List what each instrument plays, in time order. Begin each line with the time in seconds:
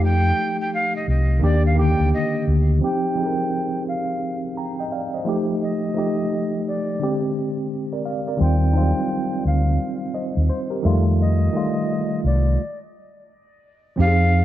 Already playing: fingered electric bass F2, tine electric piano F3 A3 D#4 G4
0.04 flute G5
0.61 flute G5
0.74 flute F5
0.96 flute D#5
1.08 fingered electric bass C2, flute D#5
1.39 fingered electric bass D#2, tine electric piano D#3 A#3 D4
1.44 tine electric piano G4, flute D5
1.66 flute F5
1.75 tine electric piano D3 D#3 A#3
1.79 tine electric piano G4, flute G5
2.00 fingered electric bass D2
2.14 flute D#5
2.48 fingered electric bass D2
2.80 tine electric piano F3 C4 D#4
2.84 tine electric piano G4, flute G5
3.15 tine electric piano F3 C4 D#4
3.19 tine electric piano G#4
3.26 tine electric piano A#4
3.88 flute F5
4.57 tine electric piano G5 A#5
4.79 tine electric piano D#5 G5
4.92 tine electric piano D5 F5
5.14 tine electric piano C5 D#5
5.24 tine electric piano F3 A3 D#4
5.29 tine electric piano G4
5.63 flute D#5
5.94 tine electric piano F3 A3 D#4
5.98 tine electric piano G4
6.68 flute D5
6.99 tine electric piano D3 G#3 C4
7.03 tine electric piano G4
7.93 tine electric piano A#4 D5
8.05 tine electric piano D5 F5
8.28 tine electric piano A#4 D5
8.37 fingered electric bass D#2, tine electric piano D#3 G3 C4
8.41 tine electric piano F4, flute G5
8.73 tine electric piano F#3 C4 D#4
8.77 tine electric piano G3 F4
9.45 fingered electric bass D2, flute F5
10.15 tine electric piano C5 D#5
10.37 fingered electric bass D#2
10.50 tine electric piano C5
10.71 tine electric piano G4 A#4
10.82 fingered electric bass F2, tine electric piano D#3 G3 A3
10.86 tine electric piano F4
11.21 flute D#5
11.52 tine electric piano D#3 G3 A3
11.57 tine electric piano F4
12.24 fingered electric bass C2, flute D5
13.96 fingered electric bass F2, tine electric piano F3 C4 D#4
14.00 tine electric piano G4, flute F5
14.07 tine electric piano G#4